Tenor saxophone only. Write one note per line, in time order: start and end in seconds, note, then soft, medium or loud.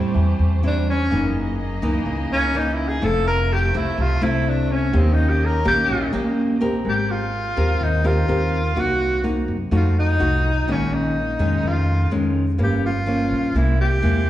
0.67 0.87 D4 medium
0.89 1.33 C#4 medium
2.32 2.58 C#4 medium
2.57 2.75 D#4 medium
2.73 2.90 E4 medium
2.88 3.06 G#4 medium
3.05 3.27 A4 medium
3.27 3.54 A#4 medium
3.53 3.75 G4 medium
3.76 4.03 E4 medium
4.01 4.24 F4 medium
4.23 4.50 E4 medium
4.49 4.73 D4 medium
4.71 4.98 C#4 medium
4.97 5.15 C4 medium
5.13 5.30 D#4 medium
5.29 5.47 G4 medium
5.45 5.67 A#4 medium
5.68 6.11 G4 medium
6.89 7.12 G4 medium
7.10 7.85 F4 medium
7.83 8.07 D#4 medium
8.06 8.82 F4 medium
8.80 9.26 F#4 medium
9.76 9.96 F4 medium
9.99 10.73 D#4 loud
10.72 10.95 C#4 medium
10.93 11.69 D#4 medium
11.67 12.13 F4 medium
12.63 12.83 G4 medium
12.86 13.60 F4 medium
13.58 13.80 E4 medium
13.81 14.30 G4 medium